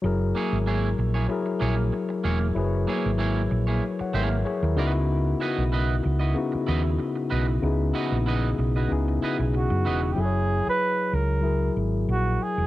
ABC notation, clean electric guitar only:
X:1
M:4/4
L:1/16
Q:"Swing 16ths" 1/4=95
K:C#dor
V:1 name="Clean electric guitar"
z2 [A,EGc] z [A,EGc] z2 [A,EGc] z2 [A,EGc] z3 [A,EGc] z | z2 [A,EGc] z [A,EGc] z2 [A,EGc] z2 [A,EGc] z3 [EFBd] z | z2 [EFBd] z [EFBd] z2 [EFBd] z2 [EFBd] z3 [EFBd] z | z2 [EFBd] z [EFBd] z2 [EFBd] z2 [EFBd] z3 [EFBd] z |
z16 |]